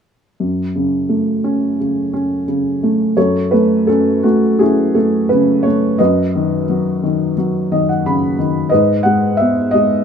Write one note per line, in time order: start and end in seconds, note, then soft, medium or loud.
0.40 3.13 F#2 soft
0.75 1.78 C#3 soft
1.09 2.43 A3 soft
1.44 2.12 C#4 soft
1.80 2.46 C#3 soft
2.13 3.14 C#4 soft
2.48 3.15 C#3 soft
2.83 3.16 A3 soft
3.17 5.96 F#2 soft
3.17 3.86 A4 soft
3.17 3.53 C#5 medium
3.51 4.23 A3 soft
3.51 3.88 B4 medium
3.87 4.59 C#4 soft
3.87 4.24 A4 medium
4.23 4.94 A3 soft
4.23 4.60 F#4 medium
4.59 5.96 C#4 soft
4.59 5.96 E4 soft
4.59 4.96 G#4 medium
4.95 5.65 A3 soft
4.95 5.27 A4 soft
5.29 5.98 C#3 soft
5.29 5.65 B4 medium
5.63 5.99 A3 soft
5.63 5.99 C#5 medium
5.98 8.67 F#2 medium
5.98 7.33 B4 soft
5.98 6.64 D#5 medium
6.35 7.02 D#3 soft
6.69 7.36 F#3 soft
7.03 7.70 D#3 soft
7.38 8.67 F#3 soft
7.72 8.37 D#3 soft
7.72 7.87 D#5 medium
7.89 8.04 F#5 soft
8.06 8.70 C#3 soft
8.06 8.68 B5 soft
8.39 8.70 D#3 soft
8.69 10.04 G#2 medium
8.69 10.03 B4 medium
8.69 9.02 D#5 medium
9.03 9.73 G#3 soft
9.03 9.39 F#5 medium
9.37 10.04 B3 soft
9.37 9.70 E5 medium
9.71 10.04 G#3 soft
9.71 10.04 D#5 medium